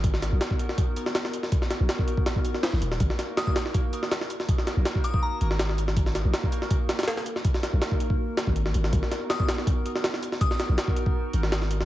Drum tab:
HH |x---x---x---x---x---x---x---x---|x---x---x---x---x---x---x---x---|x---x---x---x---x---x---x---x---|x---x---x---x-------x---x---x---|
SD |--o-o---o-----o-------o-o-o---o-|--o-o---o-------o-----o-o-o---o-|--o-o---o---o-o-------o-o-o---o-|--o-o---o-------------o-o-o---o-|
BD |o---------o-----o---------------|o---------o---o---o-------------|o---------o-----o---------------|o---------o---o-----------------|

HH |x---x---x---x---x---x-xxx---x---|x---x---x---x-------x---x---x---|x---x---x---x---x---x---x---x---|x---x---x---x-------x---x---x---|
SD |--o-o---o-----o-----o-ooo-o---o-|--o-o---o-----------o-----o---o-|--o-o---o---o-o-------o-o-o---o-|--o-o---o-------------o-o-o---o-|
BD |o---------o-----o---------------|o---------o---o-------o---------|o---------o-----o---------------|o---------o---o-----------------|